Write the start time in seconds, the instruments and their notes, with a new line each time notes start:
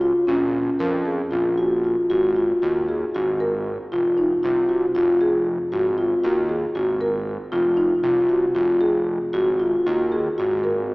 Already playing: analog synth bass C#2
0.01 marimba F4
0.27 analog synth bass A#1, marimba C#4
0.79 analog synth bass F2, marimba A#4
1.05 marimba G#4
1.31 analog synth bass A#1, marimba F4
1.58 marimba F#4
1.84 marimba F4
2.10 analog synth bass G#1, marimba F#4
2.36 marimba F4
2.62 analog synth bass D#2, marimba F#4
2.89 marimba G#4
3.15 analog synth bass G#1, marimba F#4
3.40 marimba A#4
3.92 analog synth bass F1, marimba F4
4.18 marimba D#4
4.43 analog synth bass C2, marimba F4
4.69 marimba F#4
4.95 analog synth bass F1, marimba F4
5.21 marimba G#4
5.72 analog synth bass G#1, marimba F#4
5.98 marimba F4
6.24 analog synth bass D#2, marimba F#4
6.49 marimba G#4
6.75 analog synth bass G#1, marimba F#4
7.01 marimba A#4
7.52 analog synth bass F1, marimba F4
7.77 marimba D#4
8.03 analog synth bass C2, marimba F4
8.29 marimba F#4
8.55 analog synth bass F1, marimba F4
8.81 marimba G#4
9.33 analog synth bass G#1, marimba F#4
9.60 marimba F4
9.86 analog synth bass D#2, marimba F#4
10.12 marimba G#4
10.38 analog synth bass G#1, marimba F#4
10.64 marimba A#4